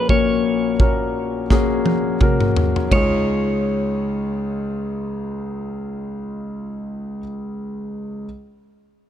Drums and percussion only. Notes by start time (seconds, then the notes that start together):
0.09 kick
0.80 kick
1.50 kick, snare
1.86 high tom
2.21 kick, mid tom
2.41 mid tom
2.57 floor tom
2.76 floor tom
2.92 kick, ride